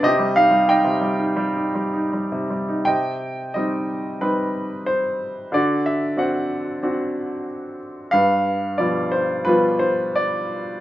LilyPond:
<<
  \new Staff \with { instrumentName = "Grand piano" } { \time 4/4 \key c \minor \tempo 4 = 90 << { ees''8 f''8 g''2~ g''8 r8 | g''4 ees''4 b'4 c''4 | d''8 e''8 fis''2~ fis''8 r8 | f''4 d''8 c''8 b'8 c''8 d''4 | } \\ { g'4 ees''2~ ees''8 r8 | ees''2 r2 | fis'4 c''2~ c''8 r8 | b'2 f'2 | } >> }
  \new Staff \with { instrumentName = "Grand piano" } { \clef bass \time 4/4 \key c \minor c16 g16 ees'16 g16 ees'16 c16 g16 ees'16 g16 ees'16 g16 ees'16 g16 c16 g16 ees'16 | c4 <g c' ees'>4 <g c' ees'>4 r4 | d4 <c' d' fis'>4 <c' d' fis'>4 r4 | g,4 <b, f g>4 <b, f g>4 r4 | }
>>